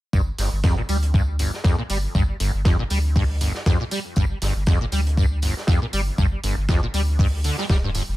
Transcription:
0.13 0.31 G1 loud
0.13 0.21 G2 loud
0.13 kick loud
0.13 tambourine medium
0.38 0.48 G1 loud
0.38 0.50 G1 medium
0.38 snare soft
0.38 open hi-hat loud
0.38 tambourine medium
0.52 0.83 G1 medium
0.64 0.75 F2 loud
0.64 kick loud
0.64 snare loud
0.64 tambourine medium
0.78 0.81 A#2 medium
0.89 1.46 D2 medium
0.89 0.97 G3 medium
0.89 open hi-hat loud
0.89 tambourine medium
1.03 closed hi-hat soft
1.14 1.22 G2 loud
1.14 kick loud
1.14 tambourine medium
1.39 1.51 G1 medium
1.39 open hi-hat loud
1.39 tambourine medium
1.54 snare soft
1.64 1.76 F2 loud
1.64 kick loud
1.64 snare loud
1.64 tambourine medium
1.78 1.82 A#2 medium
1.90 2.07 G1 medium
1.90 1.97 G3 medium
1.90 open hi-hat loud
1.90 tambourine medium
2.15 2.32 G1 loud
2.15 2.23 G2 loud
2.15 kick loud
2.15 tambourine medium
2.40 2.52 G1 medium
2.40 2.49 G1 loud
2.40 open hi-hat loud
2.40 tambourine medium
2.54 2.84 G1 medium
2.65 2.77 F2 loud
2.65 kick loud
2.65 snare loud
2.65 tambourine medium
2.79 2.83 A#2 medium
2.90 3.47 D2 medium
2.90 2.98 G3 medium
2.90 open hi-hat loud
2.90 tambourine medium
3.16 3.23 G2 loud
3.16 kick loud
3.16 open hi-hat medium
3.41 3.52 G1 medium
3.41 open hi-hat loud
3.41 tambourine medium
3.54 snare medium
3.66 3.78 F2 loud
3.66 kick loud
3.66 snare loud
3.66 tambourine medium
3.80 3.84 A#2 medium
3.91 3.99 G3 medium
3.91 open hi-hat loud
3.91 tambourine medium
4.16 4.34 G1 loud
4.16 4.24 G2 loud
4.16 kick loud
4.16 tambourine medium
4.42 4.51 G1 loud
4.42 4.53 G1 medium
4.42 snare soft
4.42 open hi-hat loud
4.42 tambourine medium
4.56 4.86 G1 medium
4.66 4.79 F2 medium
4.66 kick loud
4.66 snare loud
4.66 tambourine medium
4.81 4.85 A#2 medium
4.92 5.49 D2 medium
4.92 5.00 G3 medium
4.92 open hi-hat loud
4.92 tambourine medium
5.07 closed hi-hat soft
5.17 5.25 G2 loud
5.17 kick loud
5.17 tambourine medium
5.42 5.54 G1 medium
5.42 open hi-hat loud
5.42 tambourine medium
5.57 snare soft
5.67 5.79 F2 loud
5.67 kick loud
5.67 snare loud
5.67 tambourine medium
5.82 5.86 A#2 medium
5.93 6.11 G1 medium
5.93 6.01 G3 medium
5.93 open hi-hat loud
5.93 tambourine medium
6.18 6.36 G1 loud
6.18 6.26 G2 loud
6.18 kick loud
6.18 tambourine medium
6.43 6.53 G1 loud
6.43 6.55 G1 medium
6.43 open hi-hat loud
6.43 tambourine medium
6.57 6.88 G1 medium
6.69 6.80 F2 loud
6.69 kick loud
6.69 snare loud
6.69 tambourine medium
6.83 6.86 A#2 medium
6.94 7.51 D2 medium
6.94 7.02 G3 medium
6.94 open hi-hat loud
6.94 tambourine medium
7.19 7.27 G2 loud
7.19 kick loud
7.19 open hi-hat medium
7.44 7.56 D3 medium
7.44 open hi-hat loud
7.44 tambourine medium
7.58 7.65 G3 medium
7.58 snare medium
7.69 8.01 D1 medium
7.69 7.77 G3 medium
7.69 kick loud
7.69 snare loud
7.69 tambourine medium
7.83 7.90 G2 medium
7.94 8.02 G1 medium
7.94 open hi-hat loud
7.94 tambourine medium
8.09 8.16 F1 medium

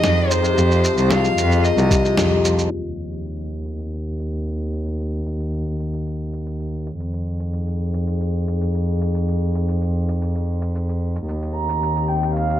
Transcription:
0.00 0.39 F2 medium
0.00 0.28 D#3 medium
0.00 0.35 F3 medium
0.00 2.67 F3 medium
0.00 0.55 D#4 medium
0.00 2.67 G#4 medium
0.00 0.31 D#5 loud
0.00 snare loud
0.04 shaker soft
0.30 0.48 D#3 loud
0.30 1.11 C5 medium
0.30 shaker medium
0.43 0.82 C3 loud
0.43 shaker soft
0.56 0.93 F2 loud
0.56 0.69 F3 medium
0.56 2.70 F4 medium
0.56 shaker soft
0.70 0.88 F3 medium
0.70 shaker soft
0.83 1.02 C3 medium
0.83 shaker medium
0.97 1.33 C2 medium
0.97 1.63 D#3 medium
0.97 shaker soft
1.09 1.69 F3 loud
1.09 1.65 F5 medium
1.09 snare medium
1.09 shaker soft
1.24 shaker soft
1.37 1.73 F2 loud
1.37 shaker medium
1.51 shaker soft
1.63 1.82 D#3 medium
1.63 2.44 D#5 medium
1.63 shaker soft
1.77 1.88 C2 loud
1.77 2.17 C3 loud
1.77 shaker soft
1.91 2.03 F3 medium
1.91 kick loud
1.91 shaker medium
2.04 2.22 F3 medium
2.04 shaker soft
2.17 2.54 F2 medium
2.17 2.36 C3 medium
2.17 snare loud
2.17 shaker soft
2.31 2.76 D#3 medium
2.44 2.76 F3 medium
2.44 shaker medium
2.58 shaker soft
2.71 6.97 D#2 medium
2.71 6.95 D#3 medium
2.71 6.95 C4 medium
2.71 6.96 G4 medium
2.71 crash medium
2.85 shaker soft
3.12 shaker medium
3.25 shaker soft
3.39 shaker soft
3.65 shaker medium
3.79 shaker soft
3.93 shaker soft
4.19 shaker medium
4.32 shaker soft
4.46 shaker soft
4.48 shaker soft
4.50 shaker soft
4.53 shaker soft
4.55 shaker soft
4.73 shaker soft
4.86 shaker soft
5.00 shaker soft
5.26 shaker medium
5.40 shaker soft
5.53 shaker soft
5.80 shaker medium
5.93 shaker soft
6.06 shaker soft
6.33 shaker medium
6.46 shaker soft
6.60 shaker soft
6.86 shaker medium
6.99 11.25 F2 medium
6.99 11.24 F3 medium
6.99 11.24 D#4 medium
6.99 11.24 G#4 medium
6.99 shaker soft
7.13 shaker soft
7.40 shaker medium
7.53 shaker soft
7.67 shaker soft
7.94 shaker medium
8.07 shaker soft
8.20 shaker soft
8.47 shaker medium
8.61 shaker soft
8.74 shaker soft
9.01 shaker medium
9.14 shaker soft
9.28 shaker soft
9.55 shaker medium
9.68 shaker soft
9.81 shaker soft
10.08 shaker medium
10.21 shaker soft
10.35 shaker soft
10.61 shaker medium
10.75 shaker soft
10.89 shaker soft
11.16 shaker medium
11.27 12.60 D#2 medium
11.27 12.60 D#3 medium
11.27 12.60 C4 medium
11.27 12.60 G4 medium
11.27 shaker soft
11.42 shaker soft
11.54 12.10 A#5 medium
11.69 shaker medium
11.83 shaker soft
11.96 shaker soft
12.08 12.34 G5 medium
12.22 shaker medium
12.35 12.60 F5 medium
12.35 shaker soft
12.49 shaker soft

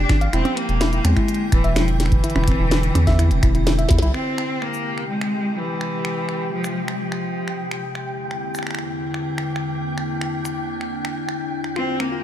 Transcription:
0.00 0.29 F3 medium
0.00 0.30 C4 medium
0.00 0.21 D4 loud
0.00 0.30 G4 medium
0.00 4.13 G5 medium
0.09 0.28 G#1 loud
0.09 finger snap medium
0.09 kick loud
0.09 snare medium
0.09 closed hi-hat medium
0.21 0.33 F5 loud
0.21 closed hi-hat soft
0.33 0.42 E1 loud
0.33 4.11 D3 medium
0.33 2.22 A#3 medium
0.33 0.58 C4 loud
0.33 0.42 E4 loud
0.33 4.11 E4 medium
0.33 finger snap medium
0.33 closed hi-hat medium
0.45 closed hi-hat soft
0.45 percussion blips medium
0.57 1.06 A#3 loud
0.57 closed hi-hat medium
0.69 1.00 E1 medium
0.69 closed hi-hat soft
0.81 0.89 E4 loud
0.81 snare loud
0.81 closed hi-hat medium
0.93 1.01 E4 medium
0.93 closed hi-hat soft
1.04 1.14 E2 loud
1.04 1.52 G#3 loud
1.04 1.13 C4 medium
1.04 finger snap medium
1.04 closed hi-hat medium
1.17 1.28 E4 medium
1.17 finger snap medium
1.17 kick medium
1.17 closed hi-hat soft
1.28 closed hi-hat medium
1.34 closed hi-hat soft
1.52 1.66 D1 medium
1.52 1.74 E3 medium
1.52 finger snap medium
1.52 kick loud
1.52 closed hi-hat medium
1.64 2.19 E1 loud
1.64 1.76 E5 loud
1.64 closed hi-hat soft
1.76 1.87 F3 medium
1.76 1.85 E4 medium
1.76 finger snap medium
1.76 snare loud
1.76 closed hi-hat medium
1.88 closed hi-hat soft
2.00 3.63 E3 medium
2.00 snare medium
2.00 closed hi-hat medium
2.06 finger snap medium
2.12 kick loud
2.12 closed hi-hat soft
2.24 4.12 C4 medium
2.24 2.32 E4 loud
2.24 closed hi-hat medium
2.30 closed hi-hat soft
2.36 2.54 E1 medium
2.36 2.44 E4 medium
2.36 finger snap soft
2.36 percussion blips medium
2.44 2.56 C4 medium
2.44 finger snap soft
2.44 closed hi-hat medium
2.48 finger snap soft
2.48 kick medium
2.59 2.91 E1 medium
2.59 2.71 E4 medium
2.71 snare loud
2.71 closed hi-hat medium
2.83 closed hi-hat soft
2.95 3.32 E2 loud
2.95 closed hi-hat medium
2.95 percussion blips medium
3.07 3.18 E5 loud
3.07 kick medium
3.07 snare medium
3.07 closed hi-hat soft
3.19 3.28 E4 loud
3.19 finger snap medium
3.19 closed hi-hat medium
3.31 3.40 E1 loud
3.31 closed hi-hat soft
3.43 3.86 E1 loud
3.43 3.51 E4 medium
3.43 finger snap medium
3.43 kick loud
3.43 closed hi-hat medium
3.55 3.63 E4 medium
3.55 closed hi-hat soft
3.67 3.72 E4 medium
3.67 snare medium
3.67 snare loud
3.67 closed hi-hat medium
3.79 3.90 E5 medium
3.79 closed hi-hat soft
3.89 4.00 E2 medium
3.89 3.99 E4 loud
3.89 kick loud
3.89 snare medium
3.89 closed hi-hat medium
3.99 4.12 C2 medium
3.99 4.11 E4 loud
3.99 snare loud
4.03 closed hi-hat soft
4.14 7.91 C3 medium
4.14 7.91 G#3 medium
4.14 4.63 C4 loud
4.14 7.91 G4 medium
4.14 12.23 G5 medium
4.14 finger snap soft
4.38 finger snap medium
4.62 5.09 A#3 medium
4.62 finger snap soft
4.74 shaker medium
4.98 finger snap soft
5.10 5.59 G#3 medium
5.21 finger snap medium
5.57 6.52 E3 medium
5.81 finger snap soft
6.05 finger snap medium
6.29 finger snap soft
6.53 6.90 F3 medium
6.64 finger snap soft
6.64 shaker medium
6.88 finger snap medium
6.93 7.02 G3 medium
7.00 7.72 F3 medium
7.12 finger snap soft
7.48 finger snap soft
7.71 finger snap medium
7.95 11.72 E2 medium
7.95 11.72 D3 medium
7.95 11.72 A#3 medium
7.95 9.84 C4 medium
7.95 11.72 E4 medium
7.95 finger snap soft
8.31 finger snap soft
8.55 finger snap soft
8.55 shaker medium
8.59 finger snap soft
8.63 finger snap soft
8.67 finger snap soft
8.71 finger snap medium
8.75 finger snap medium
8.79 finger snap soft
9.14 finger snap soft
9.38 finger snap medium
9.56 finger snap soft
9.86 11.74 D4 medium
9.98 finger snap soft
10.21 finger snap medium
10.45 finger snap soft
10.45 shaker medium
10.81 finger snap soft
11.05 finger snap medium
11.29 finger snap soft
11.64 finger snap soft
11.76 12.23 G3 medium
11.76 12.23 C4 medium
11.76 12.02 C4 loud
11.76 11.85 F4 medium
11.76 12.23 G4 medium
11.76 finger snap soft
11.88 11.97 F4 medium
12.00 12.23 A#3 medium
12.00 12.09 C4 medium
12.00 finger snap medium
12.12 12.23 F4 medium

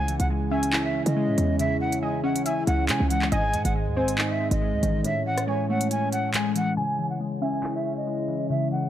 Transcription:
0.00 0.18 C#2 loud
0.00 0.95 C#3 medium
0.00 3.29 C#3 medium
0.00 3.29 C#4 medium
0.00 3.29 E4 medium
0.00 6.73 G#4 medium
0.00 0.18 G#5 loud
0.00 0.47 G#5 loud
0.08 1.16 E3 medium
0.08 closed hi-hat medium
0.19 1.03 C#2 loud
0.19 0.28 F#5 medium
0.19 closed hi-hat medium
0.30 1.15 G#3 medium
0.51 0.93 C#4 medium
0.51 1.12 E5 medium
0.51 0.82 G#5 medium
0.63 closed hi-hat loud
0.73 1.81 E4 medium
0.73 clap loud
0.85 1.03 E5 medium
0.94 2.02 C#4 medium
1.06 1.29 C#3 loud
1.06 1.56 D#5 medium
1.06 closed hi-hat medium
1.16 2.01 G#3 loud
1.28 1.37 G#2 loud
1.38 2.37 E2 loud
1.38 2.46 E3 medium
1.38 closed hi-hat medium
1.59 2.67 C#3 medium
1.59 1.77 E5 loud
1.59 closed hi-hat medium
1.81 1.99 F#5 medium
1.92 closed hi-hat medium
2.02 2.88 G#3 medium
2.02 2.43 D#5 medium
2.02 2.21 G#5 medium
2.23 2.66 C#4 loud
2.23 2.42 F#5 medium
2.36 2.66 D#2 loud
2.36 closed hi-hat medium
2.45 3.32 E4 medium
2.45 2.86 E5 medium
2.45 2.63 G#5 medium
2.45 closed hi-hat medium
2.67 2.90 C#2 loud
2.67 3.32 C#4 medium
2.67 2.85 F#5 medium
2.67 closed hi-hat medium
2.89 3.00 C#3 loud
2.89 3.32 G#3 medium
2.89 3.07 G#5 medium
2.89 clap loud
2.89 closed hi-hat medium
3.00 3.31 C#2 loud
3.10 3.32 E3 medium
3.10 3.28 F#5 medium
3.10 closed hi-hat medium
3.22 clap medium
3.31 3.55 G#1 loud
3.31 4.40 G#2 medium
3.31 5.03 G#3 medium
3.31 5.03 C5 medium
3.31 3.93 D#5 loud
3.31 5.03 D#5 loud
3.31 3.63 G#5 loud
3.31 closed hi-hat medium
3.53 3.64 G#2 loud
3.53 4.61 D#3 medium
3.53 closed hi-hat medium
3.65 3.88 G#1 loud
3.65 3.73 F#5 medium
3.65 closed hi-hat medium
3.75 4.60 G#3 medium
3.87 4.04 D#2 loud
3.97 4.39 C4 loud
3.97 4.58 C5 medium
3.97 4.28 G#5 medium
4.02 4.18 G#1 loud
4.08 closed hi-hat loud
4.18 5.05 D#4 medium
4.18 clap loud
4.30 4.48 E5 medium
4.41 5.05 C4 medium
4.51 4.74 G#1 loud
4.51 5.01 D#5 medium
4.51 closed hi-hat medium
4.61 5.05 G#3 loud
4.73 4.82 D#2 loud
4.83 5.04 A1 loud
4.83 5.05 D#3 medium
4.83 closed hi-hat medium
5.04 6.12 A2 medium
5.04 6.60 C#4 medium
5.04 6.60 E4 medium
5.04 6.60 C#5 loud
5.04 5.23 E5 loud
5.04 closed hi-hat medium
5.26 6.34 E3 medium
5.26 5.44 F#5 medium
5.38 cross-stick medium
5.38 closed hi-hat medium
5.47 6.33 G#3 medium
5.47 6.30 C#5 medium
5.47 5.66 G#5 medium
5.70 6.11 A3 medium
5.70 5.88 F#5 medium
5.81 closed hi-hat loud
5.91 6.77 C#4 medium
5.91 6.09 G#5 medium
5.91 closed hi-hat medium
6.12 6.77 A3 medium
6.12 6.30 F#5 medium
6.12 closed hi-hat medium
6.34 6.77 G#3 loud
6.34 6.52 G#5 medium
6.34 clap loud
6.34 closed hi-hat medium
6.55 6.77 E3 medium
6.55 6.74 F#5 medium
6.55 closed hi-hat medium
6.77 8.89 C#3 medium
6.77 7.85 C#3 medium
6.77 8.89 G#3 medium
6.77 8.89 E4 medium
6.77 8.89 C#5 medium
6.77 7.38 G#5 loud
6.77 7.08 G#5 loud
6.99 8.07 E3 medium
6.99 closed hi-hat medium
7.10 7.19 F#5 medium
7.10 closed hi-hat medium
7.21 8.06 G#3 medium
7.42 7.84 C#4 medium
7.42 8.03 E5 medium
7.42 7.73 G#5 medium
7.53 closed hi-hat medium
7.63 8.71 E4 medium
7.63 clap loud
7.75 7.93 E5 medium
7.85 8.89 C#4 medium
7.97 8.47 D#5 medium
7.97 closed hi-hat medium
8.07 8.89 G#3 medium
8.28 8.70 E3 medium
8.28 closed hi-hat medium
8.50 8.89 C#3 medium
8.50 8.68 E5 loud
8.50 closed hi-hat medium
8.71 8.89 E3 medium
8.71 8.89 F#5 medium
8.83 closed hi-hat medium

